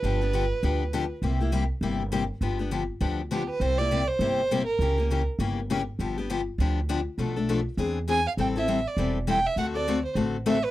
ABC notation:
X:1
M:4/4
L:1/8
Q:"Swing" 1/4=201
K:Gmix
V:1 name="Violin"
B6- B z | z8 | z6 G B | c d2 c4 _B- |
_B3 z4 z | z8 | z6 ^g f | g e2 d z2 g e |
^f d2 c z2 e B |]
V:2 name="Steel-string acoustic guitar"
[D,F,B,DG] [B,DG] [D,F,B,DG] z [D,F,B,DG] z [D,F,B,DG] z | [C,G,_B,EG] [B,EG] [C,G,B,EG] z [C,G,B,EG] z [C,G,B,EG] z | [D,F,B,DG] [B,DG] [D,F,B,DG] z [D,F,B,DG] z [D,F,B,DG] z | [C,G,_B,EG] [B,EG] [C,G,B,EG] z [C,G,B,EG] z [C,G,B,EG] z |
[^C,E,^A,^CG] [A,CG] [C,E,A,CG] z [C,E,A,CG] z [C,E,A,CG] z | [D,F,B,DG] [B,DG] [D,F,B,DG] z [D,F,B,DG] z [D,F,B,DG] z | [B,,F,A,DA] [A,DA] [B,,F,A,DA] z [E,^B,D^G] z [E,B,DG] z | [E,G,CEA] [CEA] [E,G,CEA] z [E,G,CEA] z [E,G,CEA] z |
[D,A,C^FA] [CFA] [D,A,CFA] z [D,A,CFA] z [D,A,CFA] z |]
V:3 name="Upright bass" clef=bass
G,,,4 D,,4 | C,,4 G,,,4 | G,,,4 D,,4 | C,,4 G,,,4 |
^C,,4 G,,,4 | G,,,4 D,,4 | B,,,4 E,,4 | A,,,4 E,,,4 |
D,,4 A,,,4 |]